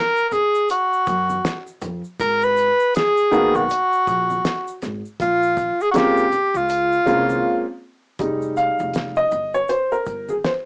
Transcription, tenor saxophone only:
0.00 0.29 A#4 loud
0.29 0.70 G#4 medium
0.29 0.34 A#4 medium
0.71 1.79 F#4 medium
2.21 2.45 A#4 loud
2.44 2.96 B4 loud
2.96 3.57 G#4 loud
3.55 4.83 F#4 medium
5.22 5.83 F4 medium
5.82 5.90 G#4 medium
5.91 5.98 F#4 medium
5.97 6.59 G4 medium
6.57 7.83 F4 medium

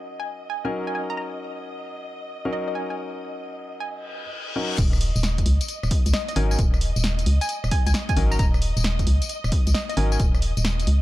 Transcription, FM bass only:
4.78 5.12 D#1 loud
5.16 5.44 D#1 loud
5.46 5.59 C#2 loud
5.83 5.90 D#1 medium
6.06 6.12 C#2 medium
6.36 6.56 G#1 loud
6.59 6.93 D#1 loud
6.96 7.25 D#1 loud
7.26 7.39 C#2 loud
7.64 7.70 D#1 medium
7.87 7.93 C#2 medium
8.17 8.37 G#1 loud
8.39 8.73 D#1 loud
8.77 9.05 D#1 loud
9.07 9.20 C#2 loud
9.44 9.51 D#1 medium
9.67 9.73 C#2 medium
9.97 10.17 G#1 loud
10.20 10.53 D#1 loud
10.57 10.85 D#1 loud
10.87 11.00 C#2 loud

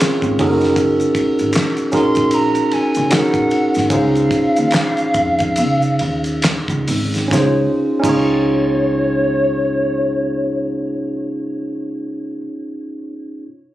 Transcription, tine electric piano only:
0.00 0.40 C4 medium
0.00 0.39 C#4 medium
0.00 0.40 F4 medium
0.00 0.39 G#4 medium
0.00 0.40 A#4 medium
0.00 0.40 C#5 loud
0.39 1.64 C#4 medium
0.39 1.64 D#4 medium
0.39 1.64 F#4 medium
0.39 1.64 G#4 medium
0.39 0.48 A4 medium
0.49 1.68 A#4 loud
1.92 2.22 C#4 medium
1.92 2.22 D#4 medium
1.92 2.22 F#4 medium
1.92 2.22 G#4 medium
1.92 2.23 A#4 medium
3.10 3.40 C#4 medium
3.10 3.41 D#4 medium
3.10 3.41 F#4 medium
3.10 3.41 G#4 medium
3.10 3.42 A#4 medium
3.90 4.21 C#4 medium
3.90 4.21 D#4 medium
3.90 4.22 F4 medium
3.90 4.22 G#4 medium
3.90 4.23 C5 medium
7.28 7.58 C#4 medium
7.28 7.59 D#4 medium
7.32 7.60 F4 medium
7.32 7.62 G#4 medium
7.38 7.63 C5 medium
8.00 12.37 C#4 loud
8.00 12.38 D#4 medium
8.04 12.39 F4 medium
8.04 12.41 G#4 medium
8.09 12.42 C#5 loud

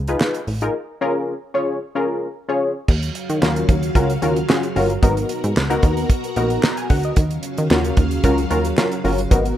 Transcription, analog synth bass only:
0.00 0.16 C#2 loud
0.47 0.69 A1 medium
2.88 3.10 D#2 loud
3.30 3.40 D#3 loud
3.42 3.64 D#2 loud
3.69 3.91 D#2 loud
3.95 4.17 C#2 medium
4.22 4.44 D#2 medium
4.76 4.98 G1 loud
5.03 5.25 G#1 loud
5.44 5.54 G#2 loud
5.57 5.79 C#2 medium
5.83 6.05 D#2 loud
6.36 6.58 A#1 loud
6.90 7.12 D2 medium
7.17 7.39 D#2 medium
7.58 7.68 D#3 loud
7.70 7.92 D#2 medium
7.97 8.19 D#2 loud
8.24 8.46 C#2 medium
8.51 8.73 D#2 loud
9.05 9.27 G1 loud
9.31 9.53 G#1 loud

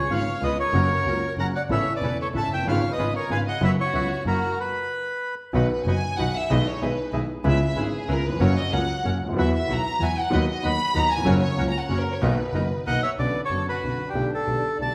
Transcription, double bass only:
0.10 0.24 G#1 medium
0.43 0.56 C#2 medium
0.74 0.87 F#1 medium
1.06 1.19 C#2 soft
1.38 1.51 F#1 soft
1.70 1.84 A1 medium
2.02 2.16 E1 soft
2.34 2.48 A1 soft
2.50 2.66 F#1 soft
2.66 2.80 G#1 medium
2.99 3.12 G#1 soft
3.30 3.43 G#1 soft
3.62 3.75 F#1 medium
3.94 4.07 C#2 soft
4.26 4.39 F#1 medium
5.54 5.67 B1 medium
5.86 5.99 F#1 medium
6.19 6.32 B1 medium
6.51 6.63 B1 medium
6.82 6.95 B1 medium
7.13 7.26 B1 medium
7.45 7.58 C#2 medium
7.77 7.90 G#1 medium
8.09 8.22 C#2 medium
8.41 8.54 F#1 medium
8.73 8.86 C#2 medium
9.06 9.19 F#1 soft
9.22 9.37 D2 soft
9.38 9.51 E2 medium
9.70 9.82 B1 medium
10.02 10.14 E2 soft
10.34 10.46 D#2 medium
10.65 10.77 D#2 medium
10.95 11.09 D#2 medium
11.28 11.40 F#1 medium
11.59 11.72 C#2 medium
11.91 12.04 F#1 medium
12.22 12.35 B1 medium
12.54 12.67 F#1 soft
12.87 13.00 B1 soft
13.19 13.32 B1 medium
13.51 13.64 F#1 soft
13.83 13.97 B1 soft
14.15 14.28 B1 medium
14.47 14.61 B1 soft
14.80 14.93 B1 soft

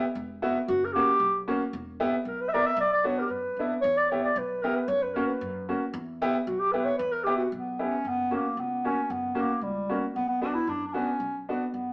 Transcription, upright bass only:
0.15 0.47 E1 loud
0.68 1.00 F#1 loud
1.19 1.52 B1 loud
1.73 2.05 E1 loud
2.25 2.57 B1 loud
2.77 3.09 B1 loud
3.30 3.54 F#2 medium
3.57 3.81 E2 medium
3.84 4.16 E2 loud
4.36 4.68 B1 loud
4.88 5.20 F#2 loud
5.41 5.73 F#2 loud
5.94 6.25 E2 loud
6.47 6.79 B1 loud
6.99 7.31 E2 loud
7.52 7.84 B1 loud
8.05 8.36 F#1 medium
8.57 8.89 C#2 medium
9.10 9.42 F#1 medium
9.61 9.94 C#2 medium
10.16 10.48 B1 medium
10.67 10.99 F#2 medium
11.20 11.52 B1 medium
11.74 11.93 F#2 medium

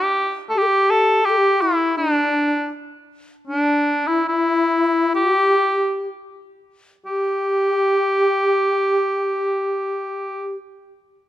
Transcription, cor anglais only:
0.00 0.38 G4 medium
0.50 0.59 A4 medium
0.58 0.92 G4 medium
0.90 1.27 A4 medium
1.25 1.62 G4 medium
1.61 1.96 E4 medium
1.97 2.67 D4 medium
3.47 4.09 D4 medium
4.07 4.28 E4 medium
4.28 5.10 E4 medium
5.15 6.04 G4 medium
7.06 10.55 G4 medium

